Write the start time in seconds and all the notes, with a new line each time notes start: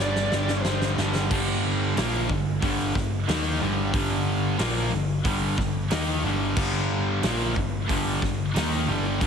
Already playing: D5
0.00 G1 G2 D3 G3
0.16 snare
0.32 G1 G2 D3 G3, snare
0.48 snare
0.61 G1 C5, snare
0.66 G2 D3 G3
0.82 snare
0.97 G1 G2 D3 G3, snare
1.15 snare
1.31 G1 G2 D3 G3, kick, crash
1.97 A#1 A#2 F3 A#3, snare, open hi-hat
2.29 G1 G2 D3, kick
2.62 G1 G2 D3 G3, kick, open hi-hat
2.95 G1 G2 D3, kick, snare
3.28 D#2 D#3 A#3 D#4, snare, open hi-hat
3.62 G1 G2 D3 G3
3.93 G1 G2 D3 G3, kick, open hi-hat
4.59 A#1 A#2 F3 A#3, snare, open hi-hat
4.92 G1 G2 D3
5.25 G1 G2 D3 G3, kick, open hi-hat
5.58 G1 G2 D3, kick, snare
5.91 D#2 D#3 A#3 D#4, snare, open hi-hat
6.23 G1 G2 D3 G3
6.57 G1 G2 D3 G3, kick, crash
7.22 A#1 A#2 F3, snare, open hi-hat
7.26 A#2 A#3
7.55 G1 G2 D3, kick
7.59 D3
7.89 G1 G2 D3 G3, kick, open hi-hat
8.22 G1 G2 D3, kick, snare
8.55 D#2 D#3 A#3 D#4, snare, open hi-hat
8.88 G1 G2 D3 G3
9.21 G1 G2 D3 G3, kick, open hi-hat